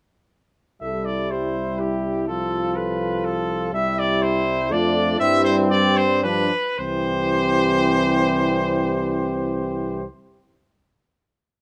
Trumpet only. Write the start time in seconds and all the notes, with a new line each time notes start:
0.81 E5
1.05 D5
1.31 C5
1.79 G4
2.28 A4
2.76 B4
3.25 A4
3.74 E5
3.99 D5
4.22 C5
4.72 D5
5.20 E5
5.45 C5
5.71 D5
5.97 C5
6.24 B4
6.79 C5